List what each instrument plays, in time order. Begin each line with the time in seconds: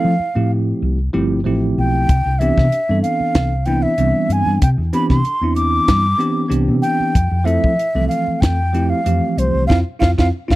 Already playing: tine electric piano F3 A3 C4 E4 A4, flute F5
0.05 fingered electric bass F3
0.19 tine electric piano E4 A4, muted fingered electric bass stroke
0.35 fingered electric bass A2, tine electric piano F3 A3 C4 E4 G4
0.82 fingered electric bass C2
1.13 fingered electric bass G1, tine electric piano F3 A3 C4 E4 G4
1.45 fingered electric bass A1, tine electric piano F3 A3 C4 E4 G4
1.78 fingered electric bass B1, flute G5
2.09 fingered electric bass C2, kick, closed hi-hat
2.25 fingered electric bass C2, tine electric piano D4 G4
2.39 tine electric piano E3 B3 C4 D4 G4, flute E5, closed hi-hat
2.58 fingered electric bass C3, kick, snare
2.72 closed hi-hat
2.89 fingered electric bass G2, tine electric piano E3 B3 C4 D4 A4
3.02 flute F5, closed hi-hat
3.20 muted fingered electric bass stroke
3.35 fingered electric bass C2, kick, snare, closed hi-hat
3.66 tine electric piano E3 B3 C4 D4 E4, flute G5, closed hi-hat
3.82 flute E5
3.98 fingered electric bass C2, tine electric piano E3 G3 B3 C4 D4, closed hi-hat
4.29 fingered electric bass G2, flute G#5, closed hi-hat
4.46 fingered electric bass G2
4.62 fingered electric bass C3, flute G5, kick, closed hi-hat
4.78 fingered electric bass E2, tine electric piano D4 G4
4.93 tine electric piano E3 B3 C4 D4 G4, flute B5, closed hi-hat
5.10 fingered electric bass C3, flute C6, kick, snare
5.25 tine electric piano D4, muted fingered electric bass stroke, closed hi-hat
5.41 fingered electric bass E2, tine electric piano E3 B3 C4 D4 E4
5.56 flute D6, closed hi-hat
5.88 fingered electric bass G2, kick, snare, closed hi-hat
6.18 tine electric piano E3 B3 C4 D4 G4, closed hi-hat
6.49 fingered electric bass C2, tine electric piano E3 B3 C4 D4 G4, closed hi-hat
6.68 fingered electric bass C3
6.82 flute G5, closed hi-hat
7.00 muted fingered electric bass stroke
7.15 fingered electric bass F2, kick, closed hi-hat
7.30 fingered electric bass F2, tine electric piano E4 G4
7.44 tine electric piano F3 A3 C4 E4 A4, flute E5, closed hi-hat
7.64 fingered electric bass F3, kick
7.78 tine electric piano E4 A4, closed hi-hat
7.95 fingered electric bass C2, tine electric piano E3 F3 A3 C4 A4
8.08 flute F5, closed hi-hat
8.27 muted fingered electric bass stroke
8.41 fingered electric bass F2, flute G5, kick, snare, closed hi-hat
8.73 tine electric piano F3 A3 C4 E4 G4, closed hi-hat
8.90 flute F5
9.05 fingered electric bass F2, tine electric piano E3 F3 A3 C4 G4, closed hi-hat
9.37 fingered electric bass C2, flute C5, closed hi-hat
9.54 fingered electric bass C2
9.67 fingered electric bass F2, tine electric piano C4 E4 F4, flute F5, kick
9.71 snare
10.00 fingered electric bass F2, tine electric piano C4 E4 F4, flute F5, kick, snare
10.18 fingered electric bass F2, tine electric piano C4 E4 F4, flute F5, kick, snare
10.48 fingered electric bass F2, tine electric piano C4 E4 F4, flute F5, kick, snare